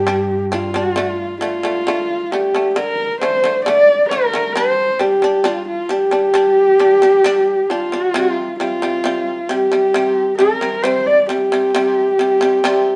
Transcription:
0.00 1.06 G2 medium
0.00 0.45 G4 loud
0.07 0.43 G3 medium
0.07 0.44 D4 loud
0.52 0.70 G3 medium
0.52 0.71 D4 medium
0.52 1.39 F4 medium
0.74 0.93 G3 medium
0.74 0.93 D4 medium
0.96 1.33 D3 medium
0.96 1.33 A3 loud
1.41 1.60 D3 medium
1.41 1.60 A3 medium
1.41 2.33 F4 loud
1.63 1.82 D3 medium
1.63 1.83 A3 medium
1.87 2.23 D3 medium
1.87 2.24 A3 medium
2.32 2.50 D3 medium
2.32 2.51 A3 medium
2.32 2.78 G4 medium
2.55 2.73 D3 medium
2.55 2.73 A3 medium
2.76 3.13 D3 medium
2.76 3.20 A#4 loud
3.21 3.40 D3 medium
3.21 3.40 A3 medium
3.21 3.63 C5 medium
3.44 3.62 D3 medium
3.44 3.63 A3 medium
3.65 4.02 D3 medium
3.65 4.03 A3 medium
3.65 4.08 D5 loud
4.09 4.30 D3 medium
4.09 4.30 A3 medium
4.09 4.54 A#4 medium
4.33 4.52 D3 medium
4.33 4.53 A3 medium
4.53 4.92 G3 medium
4.53 5.01 C5 loud
4.57 4.93 D4 loud
4.99 5.18 G3 medium
4.99 5.19 D4 medium
4.99 5.46 G4 medium
5.22 5.41 G3 medium
5.22 5.42 D4 medium
5.44 5.81 G3 medium
5.44 5.82 D4 medium
5.44 5.67 F4 medium
5.68 5.92 F4 medium
5.89 6.08 G3 medium
5.89 6.09 D4 medium
5.89 7.71 G4 loud
6.11 6.31 G3 medium
6.11 6.31 D4 medium
6.34 6.71 G3 medium
6.34 6.72 D4 loud
6.79 6.98 G3 medium
6.79 6.99 D4 medium
7.02 7.21 G3 medium
7.02 7.21 D4 medium
7.24 7.61 G3 loud
7.24 7.62 D4 loud
7.70 7.88 G3 medium
7.70 7.89 D4 medium
7.70 8.58 F4 medium
7.92 8.11 G3 medium
7.92 8.11 D4 medium
8.14 8.51 C3 medium
8.14 8.52 G3 loud
8.59 8.78 C3 medium
8.59 8.79 G3 medium
8.59 9.50 F4 medium
8.82 9.01 C3 medium
8.82 9.01 G3 medium
9.04 9.41 C3 medium
9.04 9.41 G3 medium
9.49 9.68 C3 medium
9.49 9.69 G3 medium
9.49 10.37 G4 medium
9.72 9.90 C3 medium
9.72 9.91 G3 medium
9.94 10.31 C3 medium
9.94 10.31 G3 loud
10.38 10.57 C3 medium
10.38 10.58 G3 medium
10.38 10.84 A#4 medium
10.61 10.80 C3 medium
10.61 10.80 G3 medium
10.82 11.20 C3 medium
10.82 11.21 G3 medium
10.82 11.08 C5 medium
11.06 11.28 D5 medium
11.26 11.47 C3 medium
11.26 11.48 G3 medium
11.26 12.96 G4 medium
11.52 11.70 C3 medium
11.52 11.71 G3 medium
11.75 12.11 C3 medium
11.75 12.11 G3 medium
12.19 12.37 C3 medium
12.19 12.38 G3 medium
12.41 12.59 C3 medium
12.41 12.60 G3 medium
12.64 12.96 C3 medium
12.64 12.96 G3 loud

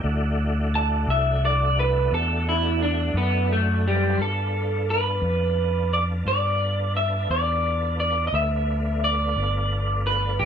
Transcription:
0.03 1.04 D2 medium
0.03 3.88 A3 medium
0.03 3.97 D4 medium
0.03 4.00 E4 medium
0.03 4.14 F#4 medium
0.75 1.08 A5 loud
1.07 2.08 C2 loud
1.07 1.42 E5 medium
1.45 1.77 D5 medium
1.79 2.11 B4 medium
2.12 3.12 E2 loud
2.12 2.46 A4 loud
2.49 2.81 E4 loud
2.82 3.15 D4 medium
3.14 4.15 F#2 loud
3.14 3.49 B3 medium
3.53 3.84 A3 loud
3.87 4.11 G3 medium
3.87 4.19 G3 loud
3.87 4.12 A3 medium
3.92 4.13 B3 medium
3.92 4.15 C4 medium
3.98 4.16 D4 medium
3.98 4.18 E4 medium
4.03 4.16 F4 medium
4.03 4.21 G4 medium
4.09 4.16 A4 medium
4.09 4.23 B4 medium
4.15 5.19 G2 medium
4.15 8.28 B3 medium
4.15 8.28 D4 medium
4.15 8.29 F4 medium
4.15 8.29 A4 medium
4.15 4.25 C5 medium
4.22 4.85 A4 medium
4.90 5.93 B4 medium
5.22 6.22 F2 medium
5.93 6.02 D5 medium
6.26 7.26 G2 medium
6.26 6.92 D5 loud
6.97 7.31 E5 medium
7.29 8.30 E2 medium
7.29 7.99 D5 medium
8.00 8.25 D5 medium
8.27 8.33 D#5 medium
8.33 9.33 D2 medium
8.33 10.45 A3 medium
8.33 10.45 B3 medium
8.33 10.45 D4 medium
8.33 10.45 F4 medium
8.33 9.04 E5 loud
9.04 10.06 D5 loud
9.36 10.37 G1 medium
10.07 10.42 B4 medium
10.39 10.45 A1 medium
10.39 10.45 G4 medium

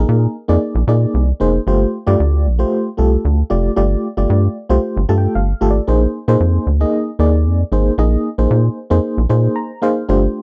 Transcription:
0.00 0.36 A#3 medium
0.00 0.36 D#4 medium
0.00 0.36 G#4 medium
0.00 0.37 A#4 medium
0.09 0.27 A#2 loud
0.48 0.58 F2 medium
0.48 0.79 A#3 medium
0.48 0.79 D#4 medium
0.48 0.79 G#4 medium
0.48 0.79 D5 medium
0.75 0.84 A#1 loud
0.88 1.06 A#2 loud
0.88 1.29 A#3 medium
0.88 1.30 D#4 medium
0.88 1.30 G#4 medium
0.88 1.30 D5 medium
1.14 1.33 C2 loud
1.40 1.59 F1 medium
1.40 1.61 A#3 medium
1.40 1.61 D#4 medium
1.40 1.61 G#4 medium
1.40 1.61 C5 medium
1.67 1.85 G1 loud
1.67 1.98 A3 medium
1.67 1.98 F4 medium
1.67 1.98 G4 medium
1.67 1.98 C5 loud
2.07 2.16 G2 loud
2.07 2.47 A3 medium
2.07 2.47 F4 medium
2.07 2.47 G4 medium
2.07 2.47 D5 loud
2.20 2.48 D2 loud
2.46 2.65 A#1 medium
2.59 2.89 A3 medium
2.59 2.90 F4 medium
2.59 2.90 G4 medium
2.59 2.90 C5 loud
2.97 3.17 C2 medium
2.97 3.39 A3 medium
2.97 3.39 F4 medium
2.97 3.40 G4 medium
2.97 3.40 A4 medium
3.25 3.43 D2 loud
3.50 3.69 F1 medium
3.50 3.71 A3 medium
3.50 3.71 F4 medium
3.50 3.71 G4 medium
3.50 3.71 D5 medium
3.76 3.96 G1 loud
3.76 4.08 A3 medium
3.76 4.08 F4 medium
3.76 4.08 G4 medium
3.76 4.08 D5 loud
4.17 4.26 G1 medium
4.17 4.57 A3 medium
4.17 4.57 F4 medium
4.17 4.57 G4 medium
4.17 4.58 D5 loud
4.30 4.48 G2 loud
4.69 4.79 C2 medium
4.69 5.00 A3 medium
4.69 5.00 F4 medium
4.69 5.00 G4 medium
4.69 5.00 C5 loud
4.97 5.05 G1 loud
5.09 5.27 G2 medium
5.09 5.50 A3 medium
5.09 5.50 F4 medium
5.09 5.50 G4 medium
5.09 5.50 A4 medium
5.09 5.17 A5 medium
5.18 5.34 G5 medium
5.35 5.54 G1 medium
5.35 5.68 F5 medium
5.61 5.80 G#1 medium
5.61 5.82 A3 medium
5.61 5.82 F4 medium
5.61 5.82 G4 medium
5.61 5.82 A4 loud
5.70 5.87 D5 medium
5.87 6.06 A#1 loud
5.87 6.18 A#3 medium
5.87 6.18 D#4 medium
5.87 6.18 G#4 medium
5.87 6.19 C5 medium
6.28 6.37 A#2 medium
6.28 6.68 A#3 medium
6.28 6.68 D#4 medium
6.28 6.68 G#4 medium
6.28 6.68 C5 loud
6.40 6.59 F2 loud
6.67 6.85 D2 medium
6.80 7.11 A#3 medium
6.80 7.11 D#4 medium
6.80 7.11 G#4 medium
6.80 7.11 D#5 loud
7.19 7.47 D#2 loud
7.19 7.61 A#3 medium
7.19 7.61 D#4 medium
7.19 7.61 G#4 medium
7.19 7.61 D5 medium
7.45 7.64 F2 medium
7.72 7.90 G#1 medium
7.72 7.93 A#3 medium
7.72 7.93 D#4 medium
7.72 7.93 G#4 medium
7.72 7.93 C5 loud
7.98 8.17 A#1 loud
7.98 8.29 A#3 medium
7.98 8.29 D#4 medium
7.98 8.29 G#4 medium
7.98 8.29 D#5 loud
8.38 8.47 A#1 loud
8.38 8.78 A#3 medium
8.38 8.78 D#4 medium
8.38 8.79 G#4 medium
8.38 8.79 C5 loud
8.51 8.69 A#2 loud
8.90 9.00 F2 medium
8.90 9.21 A#3 medium
8.90 9.21 D#4 medium
8.90 9.21 G#4 medium
8.90 9.21 C5 loud
9.18 9.26 A#1 loud
9.29 9.48 A#2 loud
9.29 9.71 A#3 medium
9.29 9.71 D#4 medium
9.29 9.71 G#4 medium
9.29 9.71 C5 loud
9.56 9.80 A#5 medium
9.82 10.03 A#3 medium
9.82 10.03 D#4 medium
9.82 10.03 G#4 medium
9.82 10.03 C5 loud
9.82 10.07 F5 medium
10.09 10.27 G1 loud
10.09 10.39 A3 medium
10.09 10.39 D4 medium
10.09 10.40 F4 medium
10.09 10.40 G4 medium
10.09 10.40 C5 medium

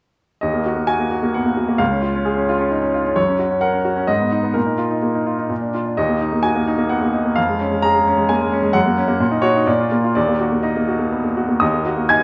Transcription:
0.41 1.76 D#2 medium
0.41 0.88 D#5 medium
0.53 0.72 A#3 soft
0.66 0.84 F#4 soft
0.76 0.95 A#3 soft
0.87 1.06 F#4 soft
0.87 1.34 G#5 medium
0.99 1.18 A#3 soft
1.11 1.30 F#4 soft
1.23 1.41 A#3 soft
1.34 1.46 B3 soft
1.34 1.80 F#5 medium
1.46 1.64 A#3 soft
1.57 1.75 F#4 soft
1.69 1.80 A#3 soft
1.78 3.12 C#2 medium
1.78 2.93 F5 medium
1.92 2.10 C#4 soft
2.02 2.21 F4 soft
2.15 2.33 C#4 soft
2.25 2.44 G#4 medium
2.37 2.55 C#4 soft
2.49 2.67 F4 medium
2.59 2.78 C#4 medium
2.71 2.83 D#4 soft
2.82 3.00 C#4 soft
2.94 3.12 F4 soft
3.05 3.17 C#4 soft
3.16 4.06 F#2 medium
3.16 3.62 C#5 medium
3.29 3.47 C#4 soft
3.39 3.58 F#4 soft
3.50 3.69 C#4 soft
3.61 3.81 A#4 soft
3.61 4.08 F#5 medium
3.73 3.92 C#4 soft
3.85 4.04 F#4 medium
3.96 4.09 C#4 soft
4.07 4.54 G#2 medium
4.07 4.55 D#5 medium
4.20 4.39 B3 soft
4.32 4.51 D#4 soft
4.43 4.56 B3 soft
4.54 5.47 A#2 soft
4.54 5.73 A#4 medium
4.66 4.86 D#4 soft
4.78 4.98 F4 soft
4.90 5.10 D#4 soft
5.02 5.22 A#3 soft
5.15 5.34 D#4 soft
5.26 5.45 F4 soft
5.39 5.50 D#4 soft
5.50 5.96 A#2 soft
5.62 5.81 D4 soft
5.74 5.93 F4 soft
5.86 5.98 D4 soft
5.97 7.33 D#2 medium
5.97 6.44 D#5 medium
6.09 6.28 A#3 soft
6.21 6.40 D#4 soft
6.33 6.51 A#3 soft
6.43 6.63 F#4 soft
6.43 6.90 G#5 medium
6.55 6.74 A#3 soft
6.67 6.86 D#4 medium
6.78 6.97 A#3 soft
6.89 7.02 B3 soft
6.89 7.36 F#5 medium
7.02 7.21 A#3 soft
7.14 7.33 D#4 soft
7.25 7.37 A#3 soft
7.36 8.71 F2 medium
7.36 7.83 F5 medium
7.49 7.67 G#3 soft
7.60 7.79 C#4 medium
7.72 7.90 G#3 soft
7.82 8.02 G#4 medium
7.82 8.29 A#5 medium
7.96 8.14 G#3 soft
8.07 8.25 C#4 medium
8.18 8.36 G#3 medium
8.29 8.41 A#3 soft
8.29 8.75 G#5 medium
8.41 8.59 G#3 soft
8.52 8.71 C#4 medium
8.63 8.75 G#3 medium
8.73 9.19 F#2 medium
8.73 9.43 F#5 medium
8.86 9.05 A#3 soft
8.98 9.16 C#4 medium
9.08 9.20 A#3 medium
9.20 9.65 A#2 medium
9.31 9.50 D#4 medium
9.42 9.62 F#4 medium
9.42 9.66 C#5 medium
9.56 9.67 D#4 medium
9.66 10.14 A#2 medium
9.66 10.14 D5 medium
9.80 9.99 F4 soft
9.91 10.11 A#3 soft
10.04 10.16 F4 soft
10.15 11.57 D#2 medium
10.15 10.64 D5 medium
10.28 10.47 A#3 soft
10.41 10.60 F#4 soft
10.52 10.71 A#3 soft
10.63 10.83 D#4 soft
10.63 11.36 D#5 soft
10.76 10.96 A#3 soft
10.88 11.08 F#4 medium
10.99 11.19 A#3 medium
11.12 11.24 B3 soft
11.24 11.44 A#3 soft
11.37 11.56 F#4 soft
11.49 11.61 A#3 soft
11.60 12.23 D#2 medium
11.60 12.05 D#5 soft
11.60 12.08 D#6 medium
11.74 11.92 A#3 soft
11.86 12.04 F#4 soft
11.97 12.16 A#3 soft
12.09 12.23 D#4 medium
12.09 12.23 G#5 medium
12.09 12.23 G#6 medium

